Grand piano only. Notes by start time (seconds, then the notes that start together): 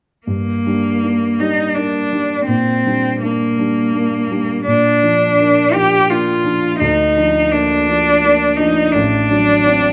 0.27 G2
0.66 G3 D4
1.03 A#3 D4
1.40 G3 D4
1.77 A#3 D4
2.12 G3 D4
2.48 A#2
2.86 G3 D4
3.23 A#3 D4
3.59 G3 D4
3.94 A#3 D4
4.31 G3 D4
4.67 A#2
5.03 F3 D4
5.39 A#3 D4
5.74 F3 D4
6.10 A#3 D4
6.45 F3 D4
6.81 D2
7.17 F3 D4
7.52 A#3 D4
7.89 F3 D4
8.24 A#3 D4
8.60 F3 D4
8.95 A1
9.30 F#3 D4
9.66 C4 D4